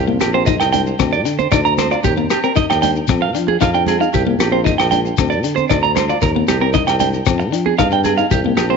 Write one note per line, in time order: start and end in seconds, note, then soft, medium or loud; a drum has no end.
0.00 0.17 C2 loud
0.07 0.22 A#3 medium
0.07 high conga medium
0.20 0.62 A#1 medium
0.20 0.29 G4 medium
0.20 cross-stick medium
0.20 closed hi-hat soft
0.20 high conga medium
0.20 low agogo medium
0.20 shekere medium
0.34 0.42 C4 medium
0.34 0.42 C5 medium
0.46 0.62 D#4 medium
0.46 0.55 D#5 medium
0.46 kick medium
0.46 shekere medium
0.60 0.93 C2 medium
0.60 0.68 G5 medium
0.60 cross-stick medium
0.60 low agogo medium
0.60 shekere soft
0.73 0.88 D4 medium
0.73 0.81 G5 medium
0.73 closed hi-hat soft
0.73 low conga medium
0.73 shekere medium
0.86 shekere soft
0.99 1.27 D2 medium
0.99 1.14 C4 medium
0.99 kick medium
0.99 cross-stick medium
0.99 low agogo medium
0.99 shekere medium
1.13 1.21 D5 medium
1.13 shekere soft
1.25 1.47 D3 medium
1.25 1.40 D4 medium
1.25 closed hi-hat soft
1.25 shekere medium
1.39 1.47 C5 medium
1.39 high conga medium
1.39 shekere soft
1.52 1.96 D2 medium
1.52 1.59 D#4 medium
1.52 1.60 D5 medium
1.52 kick medium
1.52 cross-stick medium
1.52 low agogo medium
1.52 shekere medium
1.65 1.80 D4 medium
1.65 1.73 A#5 medium
1.65 shekere soft
1.78 1.87 C5 medium
1.78 cross-stick medium
1.78 closed hi-hat medium
1.78 high conga medium
1.78 low conga medium
1.78 low agogo medium
1.78 shekere medium
1.91 1.99 F4 medium
1.91 1.99 D5 medium
1.91 shekere soft
2.04 2.26 D#2 medium
2.04 2.13 G4 medium
2.04 kick medium
2.04 shekere medium
2.17 2.32 A#3 medium
2.17 high conga medium
2.17 shekere soft
2.30 2.39 G4 medium
2.30 cross-stick medium
2.30 closed hi-hat medium
2.30 low agogo medium
2.30 shekere medium
2.44 2.51 C4 medium
2.44 2.52 A#4 medium
2.44 shekere soft
2.56 2.70 D#4 medium
2.56 2.65 D#5 medium
2.56 kick medium
2.56 shekere medium
2.70 3.03 D#2 medium
2.70 2.78 G5 medium
2.70 cross-stick medium
2.70 low agogo medium
2.82 2.97 D4 medium
2.82 2.91 G5 medium
2.82 closed hi-hat soft
2.82 low conga medium
2.82 shekere medium
2.96 shekere soft
3.08 3.37 F2 medium
3.08 3.24 C4 medium
3.08 kick loud
3.08 cross-stick medium
3.08 high conga medium
3.08 low agogo medium
3.08 shekere medium
3.22 3.30 F5 medium
3.35 3.57 F3 medium
3.35 3.49 D4 medium
3.35 closed hi-hat soft
3.35 shekere medium
3.48 3.56 G#4 medium
3.48 high conga medium
3.61 4.05 F2 medium
3.61 3.68 D#4 medium
3.61 3.70 F5 medium
3.61 kick medium
3.61 cross-stick medium
3.61 low agogo medium
3.61 shekere medium
3.74 3.89 D4 medium
3.74 3.82 G5 medium
3.74 shekere soft
3.87 3.96 G#4 medium
3.87 closed hi-hat soft
3.87 high conga medium
3.87 low conga medium
3.87 low agogo medium
3.87 shekere medium
4.00 4.07 D#4 medium
4.00 4.09 F5 medium
4.00 shekere soft
4.14 4.36 C2 medium
4.14 4.22 G4 medium
4.14 kick medium
4.14 shekere medium
4.26 4.41 A#3 medium
4.26 high conga medium
4.39 4.72 A#1 medium
4.39 4.48 G4 medium
4.39 cross-stick medium
4.39 closed hi-hat soft
4.39 high conga medium
4.39 low agogo medium
4.39 shekere medium
4.52 4.60 C4 medium
4.52 4.60 C5 medium
4.64 4.79 D#4 medium
4.64 4.74 D#5 medium
4.64 kick medium
4.64 shekere medium
4.78 5.11 A#1 medium
4.78 4.86 G5 medium
4.78 cross-stick medium
4.78 low agogo medium
4.78 shekere soft
4.91 5.07 D4 medium
4.91 4.99 G5 medium
4.91 closed hi-hat soft
4.91 low conga medium
4.91 shekere medium
5.05 shekere soft
5.18 5.45 D2 medium
5.18 5.33 C4 medium
5.18 kick medium
5.18 cross-stick medium
5.18 low agogo medium
5.18 shekere medium
5.30 5.38 D5 medium
5.30 shekere soft
5.43 5.65 D3 medium
5.43 5.59 D4 medium
5.43 closed hi-hat soft
5.43 shekere medium
5.56 5.64 C5 medium
5.56 high conga medium
5.56 shekere soft
5.70 6.14 D2 medium
5.70 5.78 D#4 medium
5.70 5.78 D5 medium
5.70 kick medium
5.70 cross-stick medium
5.70 low agogo medium
5.70 shekere medium
5.83 5.98 D4 medium
5.83 5.91 A#5 medium
5.83 shekere soft
5.96 6.04 C5 medium
5.96 cross-stick medium
5.96 closed hi-hat medium
5.96 high conga medium
5.96 low conga medium
5.96 low agogo medium
5.96 shekere medium
6.09 6.17 F4 medium
6.09 6.17 D5 medium
6.09 shekere soft
6.22 6.44 D#2 loud
6.22 6.30 A#4 medium
6.22 kick medium
6.22 shekere medium
6.36 6.50 A#3 medium
6.36 high conga medium
6.48 6.81 C2 medium
6.48 6.57 G4 medium
6.48 cross-stick medium
6.48 closed hi-hat medium
6.48 high conga medium
6.48 low agogo medium
6.48 shekere medium
6.61 6.69 C4 medium
6.61 6.69 A#4 medium
6.74 6.88 D#4 medium
6.74 6.82 D#5 medium
6.74 kick medium
6.74 shekere medium
6.87 7.20 C2 medium
6.87 6.95 G5 medium
6.87 cross-stick medium
6.87 low agogo medium
6.87 shekere soft
7.00 7.15 D4 medium
7.00 7.08 G5 medium
7.00 closed hi-hat soft
7.00 low conga medium
7.00 shekere medium
7.14 shekere soft
7.26 7.54 F2 loud
7.26 7.41 C4 medium
7.26 kick medium
7.26 cross-stick medium
7.26 low agogo medium
7.26 shekere medium
7.40 muted clean electric guitar stroke medium
7.40 shekere soft
7.52 7.74 F3 medium
7.52 7.67 D4 medium
7.52 closed hi-hat soft
7.52 shekere medium
7.66 7.74 G#4 medium
7.66 high conga medium
7.78 8.23 G2 medium
7.78 7.86 D#4 medium
7.78 7.87 F5 medium
7.78 kick medium
7.78 cross-stick medium
7.78 low agogo medium
7.78 shekere medium
7.92 8.07 D4 medium
7.92 8.00 G5 medium
7.92 shekere soft
8.04 8.13 G#4 medium
8.04 closed hi-hat soft
8.04 high conga medium
8.04 low conga medium
8.04 low agogo medium
8.04 shekere medium
8.18 8.26 D#4 medium
8.18 8.26 F5 medium
8.18 shekere soft
8.31 8.53 C2 medium
8.31 8.39 G4 medium
8.31 kick medium
8.31 shekere loud
8.44 8.60 A#3 medium
8.44 high conga medium
8.56 8.77 A#1 medium
8.56 8.65 G4 medium
8.56 cross-stick medium
8.56 closed hi-hat soft
8.56 high conga medium
8.56 low agogo medium
8.56 shekere medium
8.70 8.77 C4 medium
8.70 8.77 C5 medium